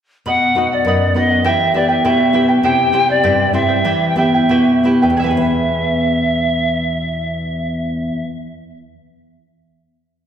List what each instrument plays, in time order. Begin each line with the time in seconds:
0.26 nylon-string guitar B2, charango B4 D#5 F#5, pan flute F#5
0.55 nylon-string guitar B3 D#4 F#4, charango B4 D#5 F#5
0.72 pan flute D5, charango D#5 F#5
0.84 nylon-string guitar F#2, charango B4 D#5 F#5
1.14 nylon-string guitar B3 D#4 F#4, charango B4 D#5 F#5, pan flute D#5
1.30 charango D#5 F#5
1.44 nylon-string guitar E3, charango E4 G4 B4 E5 G5, pan flute E5
1.74 nylon-string guitar B3 E4 G4, charango E4 B4 E5 G5, pan flute D5
1.88 charango E4 B4 G5, pan flute E5
2.04 nylon-string guitar B2, charango E4 G4 B4 E5 G5, pan flute E5
2.33 nylon-string guitar B3 E4 G4, charango E4 B4 E5 G5
2.49 charango E4 B4 G5
2.63 nylon-string guitar C3, charango E4 G4 C5 E5 G5, pan flute G5
2.92 nylon-string guitar C4 E4 G4, charango E4 C5 E5 G5
3.08 charango E4 C5 G5, pan flute D5
3.23 nylon-string guitar G2, charango E4 G4 C5 E5 G5
3.53 nylon-string guitar C4 E4 G4, charango E4 C5 E5 G5, pan flute E5
3.69 charango E4 C5 G5
3.84 nylon-string guitar E3, charango E4 G4 B4 E5 G5
4.09 pan flute G5
4.16 nylon-string guitar B3 E4 G4, charango E4 B4 E5 G5, pan flute E5
4.34 charango E4 B4 G5
4.49 nylon-string guitar B2, charango E4 G4 B4 E5 G5
4.83 nylon-string guitar B3 E4 G4, charango E4 B4 E5 G5
5.02 nylon-string guitar E2, charango E4 B4 G5
5.10 nylon-string guitar B2
5.17 nylon-string guitar E3, charango G#4 E5, pan flute E5
5.22 nylon-string guitar B3, charango E4 B4
5.26 charango G#5
5.31 nylon-string guitar G#4
5.37 nylon-string guitar B4